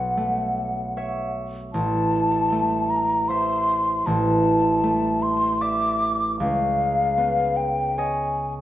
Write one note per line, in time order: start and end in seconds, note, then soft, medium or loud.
0.00 1.77 B1 soft
0.00 0.14 A4 soft
0.00 0.96 C#5 soft
0.00 0.96 E5 soft
0.00 1.34 F#5 medium
0.17 2.51 A3 soft
0.97 1.77 C#5 soft
0.97 3.29 E5 soft
1.73 4.05 A1 soft
1.73 2.91 A5 medium
2.52 4.82 A3 soft
2.90 3.30 A#5 medium
3.28 4.10 C5 soft
3.28 5.60 E5 soft
3.28 4.08 C6 medium
4.06 6.43 A1 medium
4.06 5.24 A5 medium
4.84 6.43 A3 soft
5.22 5.63 C6 medium
5.61 6.43 D5 soft
5.61 6.43 E5 soft
5.61 6.39 D6 medium
6.40 8.61 C#2 soft
6.40 7.58 F5 medium
7.18 8.61 B3 soft
7.57 8.00 G5 medium
7.98 8.61 C#5 soft
7.98 8.61 D#5 soft
7.98 8.54 G#5 medium